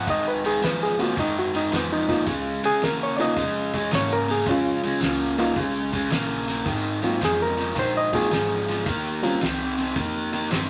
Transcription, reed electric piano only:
0.10 D#5
0.28 B4
0.46 G#4
0.64 B4
0.83 G#4
0.99 A#3 C4 F4 F#4
1.19 D#4
1.39 F#4
1.57 D#4
1.75 B3
1.93 D#4
2.08 A#3 B3 D#4 F4
2.66 G#4
2.84 A#4
3.03 C#5
3.17 A#3 B3 D#4 F4 D5
3.21 D#5
3.95 C#5
4.13 A#4
4.31 G#4
4.49 C#4 F4
5.38 A#3 B3 D#4 F4
7.03 F#3 A#3 C4 F4
7.24 G#4
7.42 A#4
7.79 C5
7.97 D#5
8.13 F#3 A#3 C4 F4 G#4
9.23 G3 C4 C#4 F4

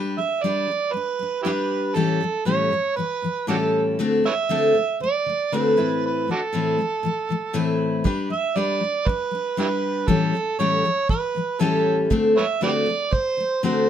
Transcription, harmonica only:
0.18 E5
0.42 D5
0.93 B4
1.43 E4 G4 B4
1.94 A4
2.46 C#5
2.96 B4
3.48 D4 F#4 A4
4.26 B4 C#5 E5
5.03 D5
5.55 B4
6.06 B4
6.31 D4 F#4 A4
8.32 E5
8.57 D5
9.07 B4
9.59 E4 G4 B4
10.08 A4
10.59 C#5
11.10 B4
11.60 A4
12.37 B4 C#5 E5
12.63 G4 B4 D5
13.13 C5
13.64 C5

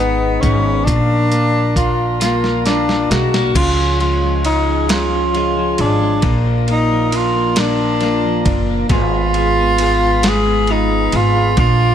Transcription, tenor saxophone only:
Already playing: B3
0.41 C#4
0.85 D4
1.77 F4
2.21 F4
2.65 D4
3.10 F#4
3.56 F4
4.00 F4
4.46 D#4
4.91 F4
5.81 D4
6.71 D#4
7.16 F4
7.60 D4
8.92 F4
10.28 G#4
10.72 D#4
11.16 F4
11.60 F4

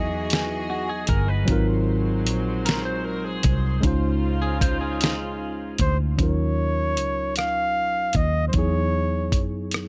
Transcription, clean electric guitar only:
0.70 F#4
0.89 G#4
1.09 A#4
1.28 B4
2.65 A#4
2.85 C5
3.05 A#4
3.24 G#4
4.42 G#4
4.61 C5
4.81 G#4

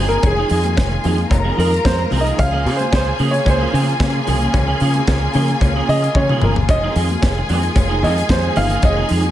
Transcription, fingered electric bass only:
Already playing: G1
0.23 F1
0.51 F2
0.78 F1
1.05 F2
1.31 F1
1.58 F2
1.85 F2
2.12 C2
2.39 C#2
2.66 C#3
2.93 C#2
3.20 C#3
3.46 C#2
3.74 C#3
4.00 C#3
4.28 C2
4.54 C#2
4.81 C#3
5.08 C#2
5.35 C#3
5.61 C#2
5.88 C#3
6.15 C#3
6.42 G1
6.69 F1
6.96 F2
7.23 F1
7.49 F2
7.76 F1
8.03 F2
8.30 F2
8.57 G1
8.83 F1
9.11 F2

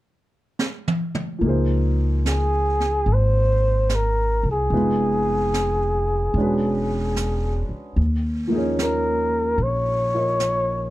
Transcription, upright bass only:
1.41 C#2
3.06 G#1
4.43 C2
4.70 F1
6.34 E1
7.69 muted upright bass stroke
7.96 D#2
9.58 A#1

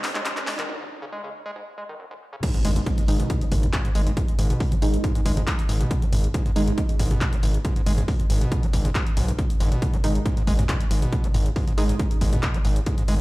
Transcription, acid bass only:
0.15 G#3
0.26 G#2
0.47 G#3
0.59 D#3
0.69 F#2
0.81 G#2
1.02 C#3
1.12 G#3
1.24 C#3
1.46 G#3
1.56 G#2
1.78 G#3
1.89 D#3
1.99 F#2
2.11 G#2
2.33 C#3
2.43 G#2
2.54 G#2
2.65 G#3
2.76 G#2
2.87 G#2
3.08 G#2
3.20 B2
3.41 B3
3.52 G#2
3.73 G#2
3.85 G#2
3.95 G#3
4.07 G#2
4.17 G#2
4.39 G#2
4.50 B2
4.72 B3
4.82 G#2
5.04 G#2
5.15 G#2
5.26 G#3
5.37 G#2
5.47 G#2
5.69 G#2
5.80 B2
6.02 B3
6.13 G#2
6.34 G#2
6.46 G#2
6.56 G#3
6.68 G#2
6.78 G#2
7.00 G#2
7.11 B2
7.33 B3
7.43 G#2
7.65 G#2
7.76 G#2
7.86 G#3
7.98 G#2
8.08 G#2
8.30 G#2
8.41 B2
8.63 B3
8.85 G#2
8.95 G#2
9.17 G#2
9.28 G#2
9.39 G#2
9.60 G#2
9.72 B2
9.94 B3
10.04 G#2
10.26 G#2
10.37 G#2
10.47 G#3
10.59 G#2
10.69 G#2
10.91 G#2
11.02 B2
11.24 B3
11.34 G#2
11.56 G#2
11.68 G#2
11.78 G#3
11.89 G#2
12.00 G#2
12.21 G#2
12.33 B2
12.54 B3
12.65 G#2
12.87 G#2
12.98 G#2
13.08 G#3

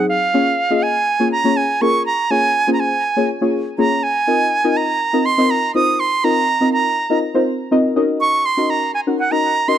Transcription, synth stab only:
Already playing: F#3 C4 D#4 G#4
0.34 A#3 C#4 F4 G#4 C#5
0.70 A#3 C#4 F4 G#4 D#5
1.19 A#3 C#4 F4 G#4 C#5
1.44 A#3 C#4 F4 G#4 C#5
1.81 A#3 C#4 F4 G#4 A#4
2.30 A#3 C#4 F4 G#4 C#5
2.67 A#3 C#4 F4 G#4 C5
3.16 A#3 C#4 F4 G#4 C#5
3.41 A#3 C#4 F4 G#4 C#5
3.78 A#3 C#4 F4 G#4 C#5
4.27 C4 D#4 F4 A#4 D#5
4.64 C4 D#4 F4 A#4 D#5
5.13 C4 D#4 F4 A#4 D#5
5.38 C4 D#4 F4 A#4 D#5
5.75 C4 D#4 F4 A#4 C5
6.24 C4 D#4 F4 A#4 D#5
6.61 C4 D#4 F4 A#4 D#5
7.10 C4 D#4 F4 A#4 D#5
7.34 C4 D#4 F4 A#4 C5
7.71 C4 D#4 F4 A#4 D#5
7.96 C#4 D#4 F#4 A#4 D#5
8.57 C#4 D#4 F#4 A#4 D#5
9.07 C#4 D#4 F#4 A#4 F#5
9.31 C#4 D#4 F#4 A#4 D#5
9.68 C#4 D#4 F#4 A#4 D#5

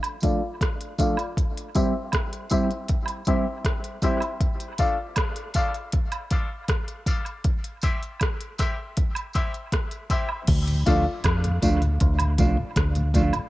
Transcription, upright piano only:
0.23 F4 A4 D5 F5
0.99 F4 A4 D5 F5
1.18 D5 F5
1.75 E4 G4 C5 E5
2.51 E4 G4 C5 E5
3.27 E4 G4 C5 E5
4.03 E4 G4 C5 E5
4.23 C5 E5
4.79 F4 A4 D5 F5
5.55 F4 A4 D5 F5
6.31 F4 A4 D5 F5
7.07 F4 A4 D5 F5
7.27 D5 F5
7.83 E4 G4 C5 E5
8.59 E4 G4 C5 E5
9.34 E4 G4 C5 E5
10.10 E4 G4 C5 E5
10.30 C5 E5
10.86 F4 A4 D5 F5

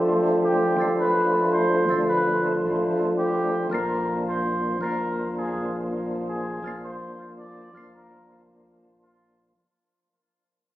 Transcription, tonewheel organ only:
Already playing: F3 A3 D4 F4
0.77 F3 A3 D4
0.81 F4
1.87 F3 A3 D4
1.92 F4
3.70 F3 A#3 D4
3.74 F4
4.79 F3 A#3 D4
4.84 F4
6.63 F3 A#3 D4
6.68 F4
7.73 F3 A#3 D4
7.77 F4

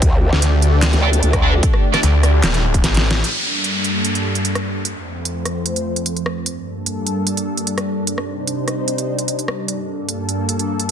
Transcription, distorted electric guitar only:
1.02 D4 A4 D5
1.42 D4 A4 D5
1.93 D4 A4 D5

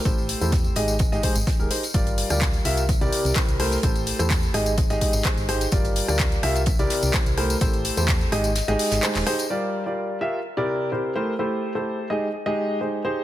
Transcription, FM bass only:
0.05 A1
0.41 E2
0.76 G#1
1.12 G#1
1.36 G#1
1.59 D#1
1.94 G1
2.30 D2
2.65 C2
3.01 C2
3.25 C2
3.48 C2
3.83 A1
4.19 E2
4.54 G#1
4.90 G#1
5.14 G#1
5.37 G#1
5.72 G1
6.08 D2
6.43 C2
6.79 C2
7.03 C2
7.26 C2
7.61 A1
7.97 E2
8.32 G#1
8.68 G#1
8.92 G#1
9.15 D#1

